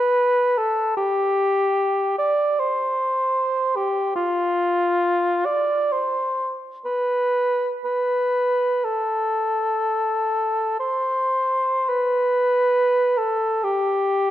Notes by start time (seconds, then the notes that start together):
Already playing: B4
0.58 A4
0.97 G4
2.18 D5
2.59 C5
3.76 G4
4.16 F4
5.45 D5
5.92 C5
6.85 B4
7.84 B4
8.84 A4
10.80 C5
11.89 B4
13.18 A4
13.64 G4